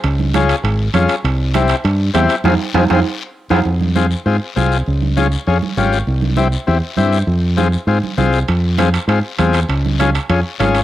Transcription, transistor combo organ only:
\new Staff \with { instrumentName = "Transistor combo organ" } { \time 4/4 \key f \minor \tempo 4 = 199 r4 <des' f' aes'>8 r4. <des' f' aes'>8 r8 | r4 <c' e' g'>8 r4. <c' e' g'>8 r8 | <c' f' aes'>8 r8 <c' f' aes'>8 <c' f' aes'>8 r4. <c' f' aes'>8 | r4 <c' f' aes'>8 r8 <c' f' aes'>8 r8 <c' f' aes'>8 r8 |
r4 <des' f' aes'>8 r8 <des' f' aes'>8 r8 <des' f' g'>8 r8 | r4 <c' e' g'>8 r8 <c' e' g'>8 r8 <c' e' g'>8 r8 | r4 <c' f' aes'>8 r8 <c' f' aes'>8 r8 <c' f' aes'>8 r8 | r4 <c' f' aes'>8 r8 <c' f' aes'>8 r8 <c' f' aes'>8 r8 |
r4 <des' f' aes'>8 r8 <des' f' aes'>8 r8 <des' f' aes'>8 r8 | }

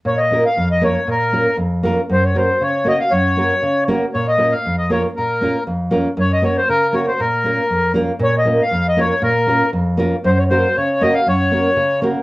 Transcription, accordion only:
\new Staff \with { instrumentName = "Accordion" } { \time 2/4 \key bes \minor \tempo 4 = 118 des''16 ees''8 f''8 ees''16 des''8 | bes'4 r4 | c''16 des''16 c''8 des''8 ees''16 f''16 | des''4. r8 |
des''16 ees''8 f''8 ees''16 des''8 | bes'4 r4 | des''16 ees''16 des''16 c''16 bes'8 des''16 c''16 | bes'4. r8 |
des''16 ees''8 f''8 ees''16 des''8 | bes'4 r4 | c''16 des''16 c''8 des''8 ees''16 f''16 | des''4. r8 | }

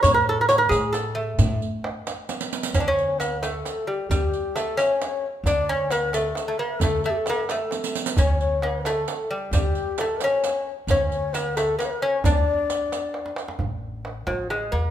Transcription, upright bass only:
\new Staff \with { instrumentName = "Upright bass" } { \clef bass \time 6/8 \tempo 4. = 88 a,4. a,4. | a,8 r2 r8 | d,2 r4 | d,8 r2 r8 |
d,2 r4 | d,8 r2 r8 | d,2 r4 | d,8 r2 r8 |
d,2 r4 | d,8 r2 r8 | a,,4. a,,4 e,8 | }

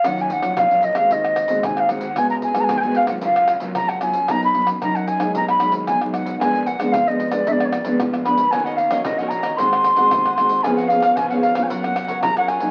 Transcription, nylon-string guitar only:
\new Staff \with { instrumentName = "Nylon-string guitar" } { \time 4/4 \key ees \minor \tempo 4 = 113 << { <ges des' f'>8 r16 <ges des' f'>8 <ges des' f'>8 <aes c' ges'>4 <aes c' ges'>8. <aes c' ges'>16 r16 | <aes ces' ges'>8. <aes ces' ges'>8 <aes ces' ges'>8 <ges bes f'>4 <ges bes f'>8. <ges bes f'>16 r16 | <fis ais dis'>8 <fis ais dis'>16 r16 <fis ais dis'>8. <fis aes dis'>8. <ges aes ees'>8. <ges aes ees'>8. | <aes ces' d'>8 r16 <aes ces' d'>8 <aes ces' d'>8 <aes ces' d'>16 <aes ces' d'>8 r16 <aes ces' d'>8. <aes ces' d'>16 r16 |
<bes des' ges'>8 r16 <bes des' ges'>8 <bes des' ges'>8. <aes c' ges'>8. <aes c' ges'>8. <aes c' ges'>8 | <ces' des' aes'>8 <ces' des' aes'>8 r16 <ces' des' aes'>8 <bes des' f'>8 <bes des'>8. <bes des' f'>8. <ges bes ees'>16 | } \\ { ees4 bes,4 ees4 ees4 | des4 aes,4 des4 des4 | b,4 fis,4 ces4 ces4 | bes,4 f4 bes,4 f4 |
ees4 bes,4 ees4 ees4 | f4 f4 ges4 des4 | } >> }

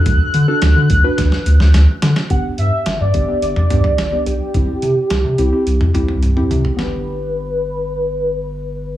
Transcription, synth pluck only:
\new Staff \with { instrumentName = "Synth pluck" } { \time 4/4 \key g \major \tempo 4 = 107 <d' fis' a'>8 r16 <d' fis' a'>8. r16 <d' fis' b'>4.~ <d' fis' b'>16 r8 | <b d' g'>4~ <b d' g'>16 r16 <b d' g'>16 <b d' g'>8 r16 <b d' g'>8 r16 <b d' g'>8 r16 | <c' e' g'>4~ <c' e' g'>16 r16 <c' e' g'>16 <c' e' g'>8 r16 <c' e' g'>8 r16 <c' e' g'>8 r16 | <b d' g'>1 | }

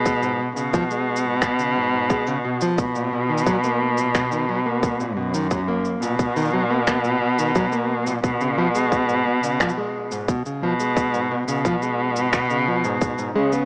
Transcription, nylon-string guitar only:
\new Staff \with { instrumentName = "Nylon-string guitar" } { \clef bass \time 4/4 \key cis \mixolydian \tempo 4 = 88 gis16 gis,16 b,16 cis16 eis16 gis8 gis,16 b,16 cis16 gis,16 gis,16 gis16 cis16 b,16 eis16 | r16 ais,16 b,16 dis16 fis16 ais8 ais,16 b,16 dis16 fis16 ais8 ais,16 b,16 dis16 | fis16 ais8 ais,16 b,16 dis16 fis16 ais8 ais,16 b,16 dis16 fis16 ais8 ais,16 | b,16 cis16 eis16 gis8 gis,16 b,16 cis16 eis16 gis8 gis,16 b,16 cis16 eis16 gis16~ |
gis16 gis,16 b,16 cis16 eis16 gis8 gis,16 b,16 cis16 eis16 gis,16 gis,16 gis,16 gis16 b16 | }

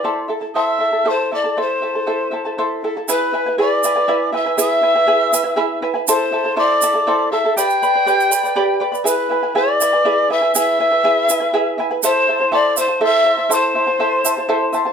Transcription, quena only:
\new Staff \with { instrumentName = "Quena" } { \time 6/8 \key a \minor \tempo 4. = 80 d'''8 r8 e'''4 c'''8 d'''8 | c'''2 r4 | b''4 d'''4. e'''8 | e'''2~ e'''8 r8 |
c'''4 d'''4. e'''8 | g'''2~ g'''8 r8 | b''4 d'''4. e'''8 | e'''2~ e'''8 r8 |
c'''4 d'''8 c'''8 e'''4 | c'''2~ c'''8 r8 | }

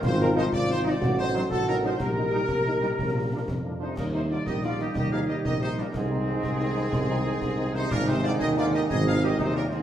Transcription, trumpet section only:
\new Staff \with { instrumentName = "Trumpet section" } { \time 6/8 \key ees \major \tempo 4. = 122 c''8 bes'8 c''8 d''8 c''8 d''8~ | d''8 c''8 c''8 a'8 bes'8 c''8 | bes'2.~ | bes'2~ bes'8 c''8 |
bes'8 c''8 d''8 ees''8 d''8 ees''8 | ees''8 f''8 ees''8 ees''8 c''8 bes'8 | aes'2.~ | aes'2~ aes'8 c''8 |
bes'8 c''8 d''8 ees''8 d''8 ees''8 | ees''8 f''8 ees''8 c''8 bes'8 aes'8 | }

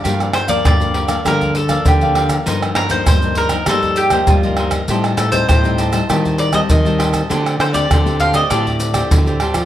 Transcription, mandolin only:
\new Staff \with { instrumentName = "Mandolin" } { \time 4/4 \key g \minor \tempo 4 = 99 r8 c''16 d''16 d''4 bes'8 a'8 g'8. r16 | r8 bes'16 c''16 c''8 bes'8 a'8 g'8 f'8. r16 | r8 a'16 c''16 c''4 r8 d''16 ees''16 ees''4 | r8 c''16 d''8. f''16 ees''16 d''4 r4 | }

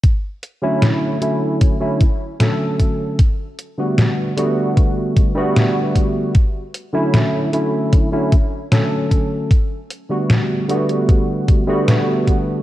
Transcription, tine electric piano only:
\new Staff \with { instrumentName = "Tine electric piano" } { \time 4/4 \key d \major \tempo 4 = 76 r8. <d fis a cis' e'>8. <d fis a cis' e'>8. <d fis a cis' e'>16 r8 <d fis a cis' a'>4 | r8. <d g a b fis'>8. <d g a b fis'>4~ <d g a b fis'>16 <d g a b fis'>4~ <d g a b fis'>16 | r8. <d fis a cis' e'>8. <d fis a cis' e'>8. <d fis a cis' e'>16 r8 <d fis a cis' a'>4 | r8. <d g a b fis'>8. <d g a b fis'>4~ <d g a b fis'>16 <d g a b fis'>4~ <d g a b fis'>16 | }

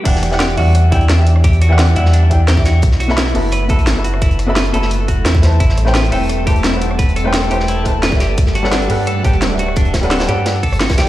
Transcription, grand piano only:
\new Staff \with { instrumentName = "Grand piano" } { \time 4/4 \key e \minor \tempo 4 = 173 <e e' g' d'' fis''>8. <e e' g' d'' fis''>8. <e g e' d'' fis''>4 <e e' g' d'' g''>16 r8 <e e' g' d'' e''>8.~ | <e e' g' d'' e''>8. <e e' g' d'' fis''>8. <e g e' d'' fis''>4 <e e' g' d'' g''>16 r8 <e e' g' d'' e''>8. | r8. <b fis' a' e'' b''>8. <b fis' a' e'' b''>4 <b fis' a' e'' b''>16 r8 <b fis' a' e'' b''>8.~ | <b fis' a' e'' b''>8. <b fis' a' e'' b''>8. <b fis' a' e'' b''>4 r4 <a e' b' c'' a''>8~ |
<a e' b' c'' a''>8. <a e' b' c'' g''>8. <a c' e' b' g''>4 <a e' b' c'' a''>16 r8 <a e' b' c'' fis''>8.~ | <a e' b' c'' fis''>8. <a e' b' c'' g''>8. <a e' b' c'' g''>4 <a e' b' c'' a''>16 r8 <g d' a' b' e''>8.~ | <g d' a' b' e''>8. <g d' a' b' fis''>8. <g d' a' b' fis''>4 <g d' a' b' g''>16 r8 <g d' a' b' e''>8.~ | <g d' a' b' e''>8. <g d' a' b' fis''>8. <g d' a' b' fis''>4 r4 <e e' g' d'' g''>8 | }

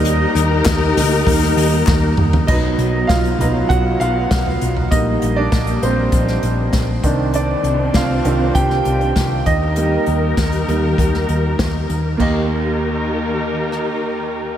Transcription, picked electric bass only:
\new Staff \with { instrumentName = "Picked electric bass" } { \clef bass \time 4/4 \key ees \major \tempo 4 = 99 ees,8 ees,8 ees,8 d,8 ees,8 ees,8 ees,8 ees,8 | b,,8 b,,8 b,,8 b,,8 b,,8 b,,8 b,,8 b,,8 | bes,,8 bes,,8 bes,,8 bes,,8 bes,,8 bes,,8 bes,,8 c,8~ | c,8 c,8 c,8 c,8 c,8 c,8 c,8 ees,8~ |
ees,8 ees,8 ees,8 ees,8 ees,8 ees,8 ees,8 ees,8 | ees,1 | }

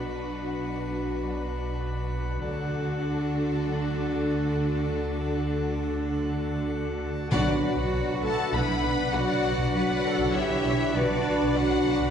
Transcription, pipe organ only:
\new Staff \with { instrumentName = "Pipe organ" } { \time 4/4 \key b \minor \tempo 4 = 100 <d' fis' b' fis''>1 | <d' fis' a' fis''>1~ | <d' fis' a' fis''>1 | <d' b' fis''>1~ |
<d' b' fis''>1 | }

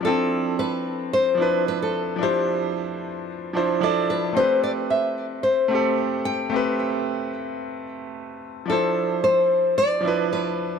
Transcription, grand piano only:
\new Staff \with { instrumentName = "Grand piano" } { \time 4/4 \key d \dorian \tempo 4 = 111 <f c' d' e'>2~ <f c' d' e'>8 <f d' e' b'>4. | <f d' e' c''>2~ <f d' e' c''>8 <f d' e' c''>16 r16 <f d' e' d''>4 | <a c' g' b'>2~ <a c' g' b'>8 <a c' g' a'>4. | <a c' g' b'>2~ <a c' g' b'>8 r4. |
<f d' e' c''>2~ <f d' e' c''>8 <f d' e' b'>4. | }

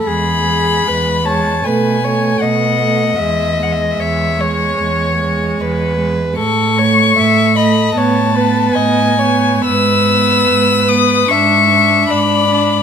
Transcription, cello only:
\new Staff \with { instrumentName = "Cello" } { \clef bass \time 4/4 \key e \major \tempo 4 = 75 e,4 e,4 b,4 b,4 | e,4 e,4 e,4 e,4 | a,4 a,4 a,4 a,4 | gis,4 gis,4 gis,4 gis,4 | }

